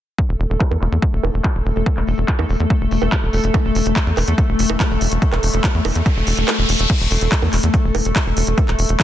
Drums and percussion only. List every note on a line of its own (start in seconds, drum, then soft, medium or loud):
0.18 kick loud
0.39 open hi-hat loud
0.50 closed hi-hat medium
0.60 kick loud
0.60 clap loud
0.71 high bongo soft
0.81 clap soft
0.81 open hi-hat loud
0.92 closed hi-hat medium
1.02 kick loud
1.23 open hi-hat loud
1.23 high bongo medium
1.34 closed hi-hat medium
1.44 kick loud
1.44 clap loud
1.65 open hi-hat loud
1.76 closed hi-hat medium
1.86 kick loud
1.86 high bongo soft
1.97 clap soft
2.07 open hi-hat loud
2.18 closed hi-hat medium
2.28 kick loud
2.28 clap loud
2.39 high bongo medium
2.49 open hi-hat loud
2.60 closed hi-hat medium
2.70 kick loud
2.70 closed hi-hat medium
2.91 open hi-hat loud
3.02 closed hi-hat medium
3.02 high bongo soft
3.12 kick loud
3.12 clap loud
3.12 closed hi-hat medium
3.33 open hi-hat loud
3.44 closed hi-hat medium
3.54 kick loud
3.54 closed hi-hat medium
3.54 high bongo medium
3.75 open hi-hat loud
3.86 closed hi-hat medium
3.96 kick loud
3.96 clap loud
3.96 closed hi-hat medium
4.17 clap soft
4.17 open hi-hat loud
4.17 high bongo soft
4.28 closed hi-hat medium
4.38 kick loud
4.38 closed hi-hat medium
4.59 open hi-hat loud
4.70 closed hi-hat medium
4.70 high bongo medium
4.80 kick loud
4.80 clap loud
4.80 closed hi-hat medium
5.01 open hi-hat loud
5.12 closed hi-hat medium
5.22 kick loud
5.22 closed hi-hat medium
5.33 clap soft
5.33 high bongo soft
5.43 open hi-hat loud
5.53 closed hi-hat medium
5.64 kick loud
5.64 clap loud
5.64 closed hi-hat medium
5.85 open hi-hat loud
5.85 high bongo medium
5.95 closed hi-hat medium
6.06 kick loud
6.06 closed hi-hat medium
6.27 open hi-hat loud
6.37 closed hi-hat medium
6.48 clap loud
6.48 closed hi-hat medium
6.48 high bongo soft
6.69 open hi-hat loud
6.79 closed hi-hat medium
6.90 kick loud
6.90 closed hi-hat medium
6.90 crash medium
7.11 open hi-hat loud
7.21 closed hi-hat medium
7.32 kick loud
7.32 clap loud
7.32 closed hi-hat medium
7.42 high bongo soft
7.53 clap soft
7.53 open hi-hat loud
7.63 closed hi-hat medium
7.74 kick loud
7.74 closed hi-hat medium
7.95 open hi-hat loud
7.95 high bongo medium
8.05 closed hi-hat medium
8.16 kick loud
8.16 clap loud
8.16 closed hi-hat medium
8.37 open hi-hat loud
8.47 closed hi-hat medium
8.58 kick loud
8.58 closed hi-hat medium
8.58 high bongo soft
8.68 clap soft
8.79 open hi-hat loud
8.89 closed hi-hat medium
9.00 kick loud
9.00 clap loud
9.00 closed hi-hat medium